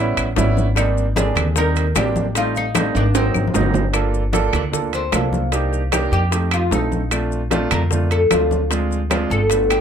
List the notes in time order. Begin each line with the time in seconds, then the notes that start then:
Already playing: A1 G3 B3 C#4
0.00 E4
0.17 A1, high bongo, high conga, high timbale, claves, maracas
0.36 G#1 G3 B3 C#4 E4, high bongo, low bongo, high conga, low timbale, maracas
0.57 high bongo, high conga, maracas
0.75 G3 A#3 C4 D4 D#4, high bongo, high conga, high timbale, claves, maracas
0.97 high conga, maracas
1.16 G3 A#3 C4 D4 G#4, high bongo, high conga, high timbale, low timbale, maracas
1.35 D#2, high conga, low conga, high timbale, claves, maracas
1.56 G3 A#3 C4 D#4 A#4, high bongo, high conga, maracas
1.76 high conga, high timbale, maracas
1.95 A1 G3 A#3 C4 D4 G4, high bongo, low bongo, high conga, high timbale, low timbale, claves, maracas
2.16 high conga, maracas
2.35 G3 A3 C4 D#4 F4, high bongo, high conga, high timbale, maracas
2.55 D#4, high bongo, high conga, maracas
2.75 G3 A3 C4 D#4, high bongo, high conga, high timbale, low timbale, claves, maracas
2.95 G#1 D4, high timbale, maracas
3.14 F#3 A#3 C4 D#4, high bongo, high conga, high timbale, maracas
3.34 G#1, high bongo, high conga, claves, maracas
3.48 high conga
3.54 G1 F#3 A#3 C4 D#4, high bongo, low bongo, low timbale, maracas
3.61 low conga
3.74 high bongo, low conga, low timbale, maracas
3.93 A#3 D4 F4 A4, high bongo, high conga, high timbale, claves, maracas
4.14 high conga, maracas
4.33 A#3 D4 F4 A4, high bongo, high conga, high timbale, low timbale, maracas
4.53 D2 D4, high conga, low conga, high timbale, claves, maracas
4.72 A#3 D4 F4 A4, high bongo, high conga, low conga, maracas
4.93 C4, high conga, high timbale, maracas
5.11 C2 A#3 D4 F4 A4, high bongo, low bongo, high conga, high timbale, low timbale, claves, maracas
5.33 high conga, maracas
5.52 A#3 D4 D#4 G4, high bongo, high conga, high timbale, maracas
5.73 high bongo, high conga, maracas
5.92 A#3 D4 D#4 G4, high bongo, high conga, high timbale, low timbale, claves, maracas
6.12 F2 G4, maracas
6.31 A3 C4 D#4 G4, high bongo, high conga, high timbale, maracas
6.51 F4, high bongo, high conga, high timbale, claves, maracas
6.71 A#1 A3 C4 D#4 A4, high bongo, low bongo, high conga, low timbale, maracas
6.92 high bongo, high conga, maracas
7.11 A3 C4 D4 F4, high bongo, high conga, high timbale, claves, maracas
7.32 high conga, maracas
7.51 A3 C4 D4 F4, high bongo, high conga, high timbale, low timbale, maracas
7.71 F2 A#4, high conga, low conga, high timbale, claves, maracas
7.91 A3 C4 D4 F4, high bongo, high conga, low conga, maracas
8.11 A4, high conga, high timbale, maracas
8.30 D2 A3 C4 D4 F4, high bongo, low bongo, high conga, high timbale, low timbale, claves, maracas
8.51 high conga, maracas
8.70 G#3 C4 D4 F4, high bongo, high conga, high timbale, maracas
8.91 high bongo, high conga, maracas
9.10 G#3 C4 D4 F4, high bongo, high conga, high timbale, low timbale, claves, maracas
9.30 G1 A4, maracas
9.50 A3 B3 D4 F4, high bongo, high conga, high timbale, maracas
9.70 G4, high bongo, high conga, high timbale, claves, maracas